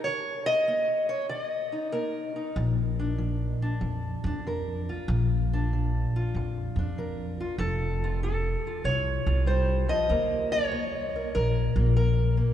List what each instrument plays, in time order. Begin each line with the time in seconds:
Already playing: steel-string acoustic guitar A#3
0.04 steel-string acoustic guitar D#3 C#5
0.46 steel-string acoustic guitar D#5
0.68 steel-string acoustic guitar A#3
1.09 steel-string acoustic guitar C#5
1.29 steel-string acoustic guitar D#3 D5
1.43 steel-string acoustic guitar D#5
1.72 steel-string acoustic guitar D#4
1.92 steel-string acoustic guitar A#3 A#4
2.36 steel-string acoustic guitar D#4
2.56 upright bass A#1, steel-string acoustic guitar A#2
2.99 steel-string acoustic guitar D4
3.18 steel-string acoustic guitar F3
3.62 steel-string acoustic guitar D4
3.81 upright bass F2, steel-string acoustic guitar F3
4.24 upright bass F2, steel-string acoustic guitar D4
4.47 steel-string acoustic guitar F3 A#4
4.89 steel-string acoustic guitar F4
5.08 upright bass A#1, steel-string acoustic guitar A#2
5.53 steel-string acoustic guitar D4
5.73 steel-string acoustic guitar F3
6.16 steel-string acoustic guitar F4
6.34 upright bass F2, steel-string acoustic guitar F3
6.76 upright bass F2, steel-string acoustic guitar D4
6.98 steel-string acoustic guitar F3 A#4
7.40 steel-string acoustic guitar F4
7.58 upright bass F1, steel-string acoustic guitar F3 A4
8.04 steel-string acoustic guitar F4
8.23 steel-string acoustic guitar F4 A4
8.67 steel-string acoustic guitar F4
8.84 upright bass C2, steel-string acoustic guitar C3 C#5
9.27 upright bass C2, steel-string acoustic guitar F4
9.46 steel-string acoustic guitar G3 C5
9.88 steel-string acoustic guitar F3 D#5
10.09 upright bass D#2, steel-string acoustic guitar D#3 A#3 A#4
10.52 steel-string acoustic guitar C#5
10.72 steel-string acoustic guitar A#3
11.16 steel-string acoustic guitar A#4
11.35 upright bass A#1, steel-string acoustic guitar D#3 A#4
11.76 upright bass A#1, steel-string acoustic guitar A#3
11.96 steel-string acoustic guitar A#3 A#4
12.37 steel-string acoustic guitar A#3